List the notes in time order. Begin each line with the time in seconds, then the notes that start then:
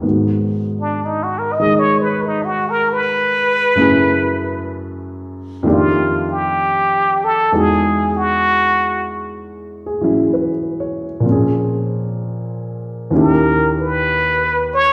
0.01 G#2 D#3 B3 F#4
0.81 D4
1.05 D#4
1.23 F#4
1.39 A#4
1.52 D#5
1.59 D#3 G#3 D#4 G#4
1.79 C#5
2.02 B4
2.26 D#4
2.45 F#4
2.70 A#4
2.93 B4
3.75 F#2 C#3 A3
3.79 E4 G#4
5.63 F2 D#3 A3
5.67 D4 G4
5.72 F4
6.31 G4
7.24 A4
7.52 E2 E3 G#3 D#4 F#4
7.57 G#4
8.17 F#4
9.86 G#4
10.01 E3 F#3 C#4 E4
10.33 B4
10.80 C#5
11.20 A#2 F3
11.26 C4 C#4
11.32 G#4
13.10 D#2 D#3 C#4
13.15 E4 G4
13.20 A#4
13.81 B4
14.74 C#5